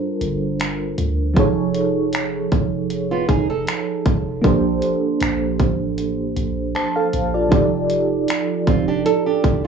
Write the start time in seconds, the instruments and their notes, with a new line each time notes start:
Already playing: fm electric piano G3 D4 F4 A4 A#4 C5
0.21 808-style bass G1, closed hi-hat
0.60 finger snap, closed hi-hat
0.98 808-style bass D2, closed hi-hat
1.34 808-style bass F1, fm electric piano F3 D#4 G#4, kick, closed hi-hat
1.38 fm electric piano A4 C#5
1.74 closed hi-hat
2.13 finger snap, closed hi-hat
2.52 808-style bass F1, kick, closed hi-hat
2.90 closed hi-hat
3.11 nylon-string guitar B3 F4
3.29 808-style bass F1, nylon-string guitar D#4 G#4, kick, closed hi-hat
3.50 nylon-string guitar D#4 A4
3.67 finger snap, closed hi-hat
4.06 808-style bass F1, kick, closed hi-hat
4.42 808-style bass A#1, fm electric piano F3 A#3 D4 G4, kick, closed hi-hat
4.46 fm electric piano A4 C5
4.82 closed hi-hat
5.20 808-style bass A#1, finger snap, closed hi-hat
5.59 808-style bass A1, kick, closed hi-hat
5.98 closed hi-hat
6.37 808-style bass A#1, closed hi-hat
6.75 fm electric piano C5 A5, finger snap, closed hi-hat
6.96 fm electric piano A4 F5
7.13 808-style bass A#1, closed hi-hat
7.34 fm electric piano F4 D5
7.49 808-style bass F1, fm electric piano F3 D#4 G4, kick, closed hi-hat
7.53 fm electric piano A4 D5
7.90 closed hi-hat
8.28 finger snap, closed hi-hat
8.67 808-style bass F1, nylon-string guitar C4 F4, kick, closed hi-hat
8.88 nylon-string guitar D4 G4
9.06 nylon-string guitar D#4 A4, closed hi-hat
9.26 nylon-string guitar D4 G4
9.44 808-style bass F1, kick, closed hi-hat